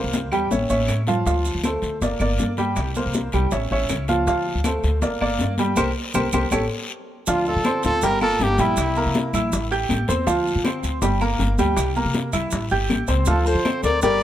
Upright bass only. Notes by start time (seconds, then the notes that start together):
0.04 C2
0.32 E2
0.51 A1
0.70 A1
0.89 A2
1.26 D2
1.55 D2
1.82 D2
2.01 G1
2.20 G1
2.39 G2
2.77 C2
3.06 C2
3.34 C2
3.52 A1
3.71 A1
3.90 C#2
4.27 D2
4.55 D2
4.84 D2
5.02 G1
5.21 G1
5.41 G2
5.78 C2
6.15 C2
6.34 C2
6.52 A1
7.28 D2
7.56 D3
7.85 D2
8.03 G1
8.40 G1
8.59 A#1
8.77 C2
9.06 C3
9.33 A#1
9.53 A1
9.90 A1
10.09 E2
10.27 D2
10.56 D3
10.83 D2
11.02 G1
11.40 G1
11.59 D2
11.77 C2
12.05 C3
12.33 C2
12.52 A1
12.71 G1
12.90 A1
13.09 C#2
13.27 D2
13.55 D3
13.83 D2
14.03 G1